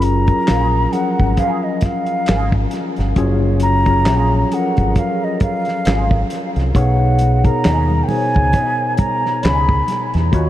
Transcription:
0.00 0.32 F#1 medium
0.00 0.11 F#3 loud
0.00 0.11 C#4 medium
0.00 0.12 F4 medium
0.00 0.12 G#4 medium
0.00 0.12 A#4 loud
0.00 0.94 A#5 medium
0.00 closed hi-hat medium
0.27 0.79 F#3 medium
0.27 0.80 C#4 soft
0.27 0.80 F4 medium
0.27 0.80 G#4 medium
0.27 0.80 A#4 medium
0.27 kick medium
0.27 closed hi-hat soft
0.47 0.85 A#1 medium
0.47 0.66 A#3 medium
0.47 0.67 F4 medium
0.47 0.67 G#4 medium
0.47 snare loud
0.47 clap medium
0.47 closed hi-hat medium
0.93 2.32 F3 medium
0.93 2.32 F#3 medium
0.93 2.32 C#4 medium
0.93 2.33 G#4 medium
0.93 2.33 A#4 medium
0.93 1.40 F#5 medium
0.93 closed hi-hat medium
1.20 1.35 G#1 medium
1.20 kick medium
1.37 1.56 A#3 medium
1.37 1.56 F4 medium
1.37 1.56 G#4 medium
1.37 1.65 F5 medium
1.37 kick medium
1.37 closed hi-hat medium
1.64 1.85 D#5 medium
1.81 2.73 F5 medium
1.81 kick medium
1.81 snare soft
1.81 closed hi-hat medium
2.06 closed hi-hat soft
2.26 2.65 G#1 medium
2.26 2.45 A#3 medium
2.26 2.46 F4 medium
2.26 snare loud
2.26 clap medium
2.26 closed hi-hat medium
2.31 2.46 G#4 medium
2.52 kick medium
2.71 snare soft
2.71 closed hi-hat medium
2.96 3.14 G1 medium
2.96 snare soft
2.96 closed hi-hat soft
3.16 4.08 F#1 medium
3.16 3.69 F#3 medium
3.16 3.70 C#4 loud
3.16 3.70 F4 medium
3.16 3.70 G#4 medium
3.16 3.70 C#5 loud
3.16 kick medium
3.16 closed hi-hat medium
3.60 4.55 A#5 loud
3.60 closed hi-hat medium
3.86 4.38 F#3 medium
3.86 4.38 C#4 medium
3.86 4.38 F4 medium
3.86 4.38 G#4 medium
3.86 4.39 C#5 medium
3.86 kick medium
3.86 closed hi-hat soft
4.06 4.43 A#1 medium
4.06 4.29 A#3 medium
4.06 4.30 F4 medium
4.06 4.30 G#4 medium
4.06 snare loud
4.06 clap medium
4.06 closed hi-hat medium
4.50 5.91 F3 medium
4.50 5.90 F#3 medium
4.50 5.90 C#4 medium
4.50 5.91 G#4 medium
4.50 4.59 A4 medium
4.50 5.00 F#5 medium
4.50 closed hi-hat medium
4.60 5.94 A#4 medium
4.77 4.94 G#1 medium
4.77 kick medium
4.77 closed hi-hat soft
4.95 5.26 F5 medium
4.95 kick medium
4.95 closed hi-hat medium
5.24 5.42 D#5 medium
5.40 6.27 F5 medium
5.40 kick medium
5.40 closed hi-hat medium
5.65 snare soft
5.65 closed hi-hat soft
5.85 6.22 G#1 medium
5.85 6.03 A#3 medium
5.85 6.04 F4 medium
5.85 6.04 G#4 medium
5.85 snare loud
5.85 clap medium
5.85 closed hi-hat medium
6.11 kick medium
6.30 snare soft
6.30 closed hi-hat medium
6.56 6.72 C2 medium
6.56 snare soft
6.56 closed hi-hat soft
6.74 7.48 B1 loud
6.74 7.27 B2 medium
6.74 7.28 B3 medium
6.74 7.28 D#4 medium
6.74 7.28 G#4 medium
6.74 7.28 C#5 medium
6.74 7.46 F#5 medium
6.74 kick medium
6.74 closed hi-hat medium
6.74 muted conga soft
7.19 closed hi-hat medium
7.19 muted conga soft
7.44 7.96 B2 medium
7.44 7.96 B3 medium
7.44 7.96 D#4 medium
7.44 7.96 G#4 medium
7.44 7.97 A#4 medium
7.44 8.05 A#5 medium
7.44 kick medium
7.44 closed hi-hat soft
7.64 8.01 D#2 medium
7.64 7.82 C#4 medium
7.64 7.83 D#4 medium
7.64 7.83 G#4 medium
7.64 snare medium
7.64 clap medium
7.64 closed hi-hat medium
7.90 high conga soft
8.04 8.09 G5 medium
8.08 9.48 B2 medium
8.08 9.48 B3 medium
8.08 9.49 D#4 medium
8.08 9.49 G#4 medium
8.08 8.17 C5 medium
8.08 8.97 G#5 medium
8.08 open hi-hat soft
8.08 high conga medium
8.08 low conga medium
8.17 9.52 C#5 medium
8.34 8.52 C#2 medium
8.34 kick medium
8.34 closed hi-hat soft
8.53 8.72 C#4 medium
8.53 8.72 D#4 medium
8.53 kick medium
8.53 closed hi-hat medium
8.53 low conga medium
8.57 8.73 G#4 medium
8.98 9.45 A#5 medium
8.98 kick medium
8.98 closed hi-hat medium
8.98 muted conga soft
8.98 high conga medium
9.26 snare soft
9.43 9.80 C#2 medium
9.43 9.61 C#4 medium
9.43 9.61 D#4 medium
9.43 9.62 G#4 medium
9.43 10.13 B5 loud
9.43 snare loud
9.43 clap medium
9.43 closed hi-hat medium
9.43 muted conga soft
9.69 kick medium
9.88 snare soft
9.88 closed hi-hat medium
9.88 high conga medium
10.14 10.30 E2 medium
10.14 snare soft
10.14 closed hi-hat soft
10.31 10.50 D#2 loud
10.31 10.50 D#3 loud
10.31 10.50 A#3 medium
10.31 10.50 F4 medium
10.31 10.50 F#4 loud
10.31 10.50 C#5 loud
10.31 kick medium
10.31 closed hi-hat medium

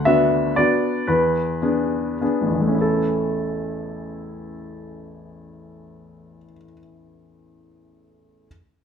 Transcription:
0.00 0.58 D2 soft
0.00 0.58 F#5 medium
0.05 0.54 B3 soft
0.05 0.54 D4 soft
0.05 0.54 F#4 soft
0.05 0.57 E5 medium
0.56 1.05 B3 soft
0.56 1.05 D4 soft
0.56 1.06 F#4 soft
0.56 1.09 D5 medium
1.07 1.60 E2 soft
1.07 2.81 B4 soft
1.62 2.17 B3 soft
1.62 2.18 D4 soft
1.62 2.18 G#4 soft
2.21 2.78 B3 soft
2.21 2.78 D4 soft
2.21 2.78 G#4 soft
2.41 6.38 A1 soft
2.48 6.44 E2 soft
2.54 6.51 E3 soft
2.61 6.57 A3 soft
2.68 6.64 C#4 soft
2.74 6.71 E4 soft
2.81 6.78 A4 soft

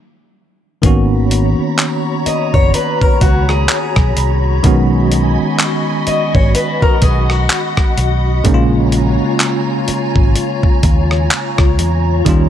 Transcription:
0.82 1.55 G#1 loud
0.82 4.60 D#3 medium
0.82 4.60 A#3 medium
0.82 4.61 B3 medium
0.82 4.61 C#4 medium
0.82 4.61 F#4 medium
0.82 4.62 F#4 medium
0.82 4.61 C#5 medium
0.82 4.61 A#5 medium
0.82 8.42 B5 medium
0.82 kick loud
0.82 closed hi-hat medium
1.31 closed hi-hat medium
1.59 muted fingered electric bass stroke soft
1.79 clap loud
1.79 closed hi-hat medium
2.26 2.52 D#5 medium
2.26 muted fingered electric bass stroke medium
2.26 closed hi-hat medium
2.54 2.72 F#1 medium
2.54 2.73 C#5 medium
2.54 kick loud
2.74 3.01 B4 medium
2.74 closed hi-hat medium
3.01 3.20 A#4 medium
3.01 kick medium
3.21 3.65 C#2 medium
3.21 3.48 F#4 medium
3.21 kick medium
3.21 closed hi-hat medium
3.49 4.60 G#4 medium
3.49 cross-stick medium
3.69 clap loud
3.69 closed hi-hat medium
3.96 4.15 B1 medium
3.96 kick medium
3.96 cross-stick medium
4.17 4.60 C2 medium
4.17 closed hi-hat medium
4.63 5.35 B1 loud
4.63 8.41 D#3 medium
4.63 8.41 G#3 medium
4.63 8.42 B3 medium
4.63 8.42 C#4 medium
4.63 8.41 F#4 medium
4.63 8.42 D#5 medium
4.63 6.53 G#5 medium
4.63 kick loud
4.63 closed hi-hat medium
4.67 8.43 F#4 medium
5.12 closed hi-hat medium
5.40 muted fingered electric bass stroke soft
5.59 clap loud
5.59 closed hi-hat medium
6.07 6.33 D#5 medium
6.07 muted fingered electric bass stroke medium
6.07 closed hi-hat medium
6.35 6.53 G#1 loud
6.35 6.54 C#5 medium
6.35 kick loud
6.55 6.81 B4 medium
6.55 8.43 F#5 medium
6.55 closed hi-hat medium
6.82 7.03 A#4 medium
6.82 muted fingered electric bass stroke medium
6.82 kick medium
7.02 7.46 B1 loud
7.02 7.30 G#4 medium
7.02 kick loud
7.02 closed hi-hat medium
7.30 8.41 F#4 medium
7.30 cross-stick medium
7.50 clap loud
7.50 closed hi-hat medium
7.77 kick medium
7.77 cross-stick medium
7.98 8.41 B1 medium
7.98 closed hi-hat medium
8.44 9.16 A#1 loud
8.44 12.22 C#3 medium
8.44 12.22 G#3 medium
8.44 12.23 A#3 medium
8.44 12.23 C#4 medium
8.44 8.54 D#4 medium
8.44 12.22 F4 medium
8.44 12.49 C#5 medium
8.44 12.22 G#5 medium
8.44 12.49 A#5 medium
8.44 kick loud
8.44 closed hi-hat medium
8.54 12.27 F4 medium
8.92 closed hi-hat medium
9.21 muted fingered electric bass stroke soft
9.40 clap loud
9.40 closed hi-hat medium
9.88 muted fingered electric bass stroke medium
9.88 closed hi-hat medium
10.16 10.34 G#1 medium
10.16 kick loud
10.36 closed hi-hat medium
10.63 kick loud
10.83 11.27 D#2 medium
10.83 kick loud
10.83 closed hi-hat medium
11.11 cross-stick medium
11.31 clap loud
11.31 closed hi-hat medium
11.58 11.77 C#2 medium
11.58 kick medium
11.58 cross-stick medium
11.79 12.22 E2 medium
11.79 closed hi-hat medium
12.25 12.49 D#2 loud
12.25 12.49 D#3 medium
12.25 12.49 G3 medium
12.25 12.49 A#3 medium
12.25 12.49 C#4 medium
12.25 12.49 D#4 medium
12.25 12.49 G5 medium
12.25 kick loud
12.25 closed hi-hat medium
12.29 12.49 F4 medium

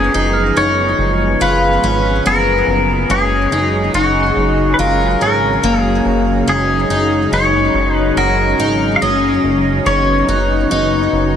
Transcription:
0.00 11.36 C#3 medium
0.00 3.07 F3 medium
0.00 3.07 G#3 medium
0.00 3.07 B3 medium
0.00 0.14 C#4 medium
0.00 0.60 G#4 medium
0.00 6.44 G#4 medium
0.14 0.52 F#1 medium
0.14 0.55 D#4 medium
0.33 2.85 F6 medium
0.38 2.87 G#6 soft
0.44 2.90 A#6 soft
0.56 0.94 F#1 loud
0.56 1.41 D#4 medium
0.56 1.42 C#5 medium
0.98 1.36 F#1 medium
1.41 1.78 F#1 loud
1.41 1.83 F4 medium
1.41 2.27 B4 medium
1.83 2.20 G#1 medium
1.83 2.25 C#4 medium
2.26 2.63 F#1 medium
2.26 3.09 B3 medium
2.26 3.13 A#4 medium
2.67 3.05 F#1 medium
3.10 3.47 F#1 loud
3.10 11.36 F#3 medium
3.10 9.82 G#3 medium
3.10 3.52 C#4 medium
3.10 11.36 C#4 medium
3.10 3.98 G#4 medium
3.52 3.89 F#1 medium
3.52 3.93 D#4 medium
3.94 4.31 F#1 medium
3.94 4.79 D#4 medium
3.94 4.75 F#4 medium
4.23 6.74 F#6 medium
4.36 4.74 F#1 medium
4.74 4.79 B4 medium
4.79 5.16 F#1 loud
4.79 5.21 F4 medium
4.79 5.21 A#4 medium
5.21 5.58 G#1 medium
5.21 5.64 C#4 medium
5.21 5.80 A#4 medium
5.63 6.01 F#1 medium
5.63 6.48 A#3 medium
5.80 6.02 G#4 medium
6.05 6.43 F#1 medium
6.47 6.85 F#1 loud
6.47 6.90 C#4 medium
6.47 9.83 D#4 medium
6.47 7.36 G#4 medium
6.90 7.27 F#1 medium
6.90 7.32 D#4 medium
7.32 7.69 F#1 loud
7.32 8.17 D#4 medium
7.32 7.96 C#5 medium
7.74 8.12 F#1 medium
7.96 8.17 B4 medium
8.16 8.54 F#1 loud
8.16 8.59 F#4 medium
8.16 8.96 A#4 medium
8.59 8.96 G#1 medium
8.59 9.02 D#4 medium
8.96 9.01 F5 medium
9.02 9.39 F#1 medium
9.02 9.85 C#4 medium
9.02 9.89 D#5 medium
9.02 10.25 G#6 soft
9.43 9.81 F#1 medium
9.86 10.23 F#1 loud
9.86 11.36 B3 medium
9.86 10.28 C#4 medium
9.86 11.36 D#4 medium
9.86 11.36 C#5 medium
10.28 10.66 F#1 loud
10.28 10.70 D#4 medium
10.28 11.36 F#6 medium
10.71 11.08 F#1 medium
10.71 11.36 D#4 medium
11.13 11.36 F#1 medium

